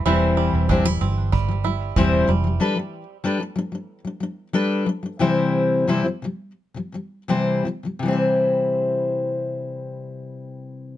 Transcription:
<<
  \new Staff \with { instrumentName = "Five-string banjo" } { \time 4/4 \key c \major \tempo 4 = 90 <e e'>8 g8 d'16 e'16 c'8 g8 e'8 c'8 g8 | r1 | r1 | r1 | }
  \new Staff \with { instrumentName = "Steel-string acoustic guitar" } { \clef bass \time 4/4 \key c \major <e g c' e' c''>4 <e g c' e' c''>16 <e g>16 <e g>8 r16 <e g>16 <e g>8 <e g c' e' c''>8 <e g>16 <e g>16 | <g d' a' b'>16 <g d'>8 r16 <g d' a' b'>16 g16 <g d'>16 <g d'>8 <g d'>16 <g d'>8 <g d' a' b'>8 <g d'>16 <g d'>16 | <c e g c' e' c''>4 <c e g c' e' c''>16 <c e g>16 <c e g>8 r16 <c e g>16 <c e g>8 <c e g c' e' c''>8 <c e g>16 <c e g>16 | <c e g c' e' c''>1 | }
  \new Staff \with { instrumentName = "Fingered electric bass" } { \clef bass \time 4/4 \key c \major e,,8. e,,8. g,,4. e,,8 f,,8 | r1 | r1 | r1 | }
  \new DrumStaff \with { instrumentName = "Drums" } \drummode { \time 4/4 r4 bd4 bd4 bd4 | r4 r4 r4 r4 | r4 r4 r4 r4 | r4 r4 r4 r4 | }
>>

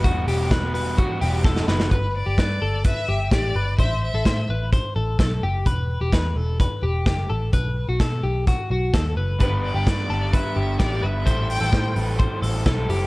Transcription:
<<
  \new Staff \with { instrumentName = "Violin" } { \time 4/4 \key g \major \tempo 4 = 128 r1 | b'8 d''4. e''4 d''4 | e''8 e''4 r2 r8 | r1 |
r1 | b'8 d''4. e''4 d''8 e''8~ | e''8 g''4 r2 r8 | }
  \new Staff \with { instrumentName = "Clean electric guitar" } { \time 4/4 \key g \major fis'8 g'8 b'8 b'8 fis'8 g'8 a'8 b'8 | b'8. g'16 b'8 a'8 b'8 g'8 g'8 b'8 | c''8. a'16 c''8 b'8 c''8 a'8 a'8 g'8 | b'8. g'16 b'8 a'8 b'8 g'8 g'8 a'8 |
b'8. fis'16 a'8 g'8 fis'8 fis'8 a'8 b'8 | b'8. g'16 b'8 a'8 b'8 g'8 g'8 b'8 | c''8. a'16 c''8 b'8 c''8 a'8 a'8 g'8 | }
  \new Staff \with { instrumentName = "Overdriven electric guitar" } { \time 4/4 \key g \major <e g b fis'>8 <e g b fis'>8. <g b fis'>8. <e g b fis'>8 <e g b fis'>4 <e g b fis'>8 | r1 | r1 | r1 |
r1 | <g, d g b d' g'>8. <g b d' g'>8. <g b d' g'>4. <g b d' g'>16 <g b d' g'>16 <g b d' g'>8 | <a, e g c' e' a'>8. <g c' e' a'>8. <g c' e' a'>4. <g c' e' a'>16 <g c' e' a'>16 <g c' e' a'>8 | }
  \new Staff \with { instrumentName = "Picked electric bass" } { \clef bass \time 4/4 \key g \major e,,8 e,,4.~ e,,16 r16 e,,4 fis,,8 | g,,8. g,,16 g,8 g,,8. r16 g,,8 a,,8 g,,8 | a,,8. a,,16 a,8 a,,8. r16 a,,8 b,,8 fis,,8 | e,,8. e,,16 e,8 e,,8. r16 e,,8 fis,,8 a,,8 |
b,,8. b,,16 b,8 b,,8. r16 b,,8 dis,8 fis,,8 | g,,8. g,,16 g,8 g,,8. r16 g,,8 a,,8 g,,8 | a,,8. a,,16 a,8 a,,8. r16 a,,8 b,,8 fis,,8 | }
  \new DrumStaff \with { instrumentName = "Drums" } \drummode { \time 4/4 <hh bd>8 hho8 <hh bd sn>8 hho8 <hh bd>8 hho8 <bd sn>16 sn16 sn16 sn16 | <hh bd>4 <hh bd sn>4 <hh bd>4 <hh bd sn>4 | <hh bd>4 <hh bd sn>4 <hh bd>4 <hh bd sn>4 | <hh bd>4 <hh bd sn>4 <hh bd>4 <hh bd sn>4 |
<hh bd>4 <hh bd sn>4 <hh bd>4 <hh bd sn>4 | <hh bd>4 <hh bd sn>4 <hh bd>4 <hh bd sn>4 | <hh bd>8 hho8 <bd sn>8 hho8 <hh bd>8 hho8 <hh bd sn>8 hho8 | }
>>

